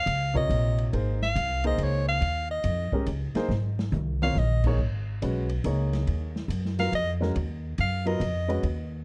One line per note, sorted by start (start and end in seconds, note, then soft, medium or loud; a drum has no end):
0.00 0.33 F5 loud
0.06 0.48 C#2 medium
0.06 hi-hat pedal medium
0.06 ride medium
0.34 0.89 C3 medium
0.34 0.90 F4 medium
0.34 0.90 A#4 medium
0.34 0.90 C#5 medium
0.34 0.90 D#5 medium
0.34 kick medium
0.34 ride soft
0.49 0.91 A#1 medium
0.49 hi-hat pedal medium
0.49 ride medium
0.78 ride soft
0.93 1.35 G#1 medium
0.93 1.18 A#3 medium
0.93 1.18 D#4 medium
0.93 1.19 G#4 soft
0.93 1.19 C5 medium
0.93 ride medium
1.22 1.62 F5 loud
1.22 snare soft
1.36 1.77 C2 loud
1.36 hi-hat pedal medium
1.36 ride medium
1.64 2.19 A#3 medium
1.64 2.19 D#4 medium
1.64 2.19 G#4 medium
1.64 2.19 C5 medium
1.64 1.85 D#5 medium
1.64 ride medium
1.78 2.20 C#2 medium
1.78 ride medium
1.83 2.08 C#5 medium
2.08 2.48 F5 loud
2.21 2.63 D#2 medium
2.21 ride medium
2.51 3.04 D#5 medium
2.64 2.90 F2 medium
2.64 hi-hat pedal medium
2.64 ride medium
2.92 3.06 G#3 medium
2.92 3.06 C#4 medium
2.92 3.06 G4 medium
2.92 3.07 A#4 medium
2.92 muted upright bass stroke soft
2.92 kick medium
3.06 3.33 C#2 medium
3.06 hi-hat pedal soft
3.06 ride medium
3.35 3.49 A#3 medium
3.35 3.49 D#4 medium
3.35 3.49 G#4 medium
3.35 3.49 C5 medium
3.35 muted upright bass stroke soft
3.35 snare medium
3.35 ride soft
3.49 3.91 G#1 medium
3.49 snare soft
3.79 snare medium
3.92 4.34 C2 medium
3.92 hi-hat pedal medium
3.92 mid tom medium
4.22 4.35 C4 medium
4.22 4.35 F4 medium
4.22 4.35 A#4 medium
4.22 4.36 C#5 medium
4.22 4.40 F5 medium
4.22 mid tom medium
4.35 4.77 A#1 medium
4.35 4.65 D#5 medium
4.35 snare medium
4.64 4.78 A#3 medium
4.64 4.78 D#4 medium
4.64 4.78 G#4 medium
4.64 4.79 C#5 medium
4.64 kick medium
4.64 crash medium
4.78 5.20 G#1 medium
5.22 5.63 B1 medium
5.22 5.47 G#3 medium
5.22 5.47 C#4 medium
5.22 5.47 F#4 medium
5.22 5.48 B4 medium
5.22 hi-hat pedal medium
5.22 ride medium
5.49 ride soft
5.64 6.06 C#2 medium
5.64 6.30 A#3 medium
5.64 6.30 D#4 medium
5.64 6.30 G#4 medium
5.64 6.31 C#5 medium
5.64 hi-hat pedal medium
5.64 ride medium
5.93 snare soft
5.93 ride soft
6.07 6.48 D#2 medium
6.07 ride medium
6.36 snare soft
6.48 6.90 F#2 medium
6.48 hi-hat pedal medium
6.48 ride medium
6.65 snare soft
6.79 6.91 F#3 medium
6.79 6.91 B3 medium
6.79 6.92 F4 medium
6.79 6.92 A#4 medium
6.79 6.92 F5 medium
6.79 snare soft
6.79 ride soft
6.92 7.34 F2 medium
6.92 7.11 D#5 medium
6.92 ride medium
7.21 7.34 G#3 medium
7.21 7.34 C#4 medium
7.21 7.34 F#4 medium
7.21 7.34 A#4 medium
7.21 snare medium
7.36 7.77 D#2 medium
7.36 ride medium
7.78 8.19 F#2 medium
7.78 8.08 F5 medium
7.78 hi-hat pedal medium
7.78 ride medium
8.06 8.19 F#3 medium
8.06 8.19 B3 medium
8.06 8.19 F4 medium
8.06 8.20 A#4 medium
8.06 8.64 D#5 medium
8.06 ride soft
8.20 8.62 F2 medium
8.20 hi-hat pedal medium
8.20 ride medium
8.48 8.62 G#3 medium
8.48 8.62 C#4 medium
8.48 8.62 F#4 medium
8.48 8.62 B4 medium
8.48 ride soft
8.63 9.04 D#2 medium
8.63 ride medium